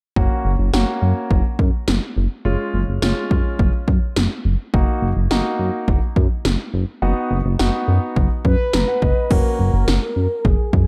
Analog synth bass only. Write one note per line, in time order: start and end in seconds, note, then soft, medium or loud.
0.16 0.28 F#1 loud
0.45 0.56 F#1 medium
0.59 0.70 F#1 loud
0.73 0.85 F#1 loud
1.02 1.13 F#2 medium
1.31 1.42 F#1 loud
1.59 1.70 F#2 medium
1.88 1.99 F#1 loud
2.16 2.28 F#1 medium
2.45 2.56 F#1 loud
2.74 2.85 F#1 medium
2.88 2.99 F#1 loud
3.02 3.13 F#1 loud
3.31 3.42 F#2 medium
3.59 3.70 F#1 loud
3.88 3.99 F#2 medium
4.17 4.28 F#1 loud
4.45 4.56 F#1 loud
4.74 4.85 F#1 loud
5.02 5.13 F#1 loud
5.17 5.28 F#1 medium
5.31 5.42 F#1 loud
5.59 5.70 F#2 medium
5.88 5.99 F#1 loud
6.16 6.27 F#2 medium
6.45 6.56 F#1 loud
6.74 6.85 F#1 loud
7.02 7.13 F#1 loud
7.31 7.42 F#1 medium
7.45 7.56 F#1 loud
7.59 7.70 F#1 loud
7.88 7.99 F#2 medium
8.16 8.28 F#1 medium
8.45 8.56 F#2 loud
8.74 8.85 F#1 loud
9.02 9.13 F#1 loud
9.31 9.42 F#1 loud
9.59 9.70 F#1 medium
9.74 9.85 F#1 loud
9.88 9.99 F#1 loud
10.16 10.27 F#2 medium
10.45 10.56 F#1 loud
10.73 10.85 F#2 medium